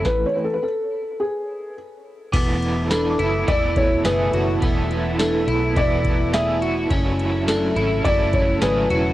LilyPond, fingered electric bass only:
\new Staff \with { instrumentName = "Fingered electric bass" } { \clef bass \time 4/4 \key e \mixolydian \tempo 4 = 105 r1 | e,,4. fis,,8 e,,4 fis,,8 fis,,8 | e,,4. b,,8 e,,2 | fis,,4. gis,,8 fis,,4 gis,,8 e,,8 | }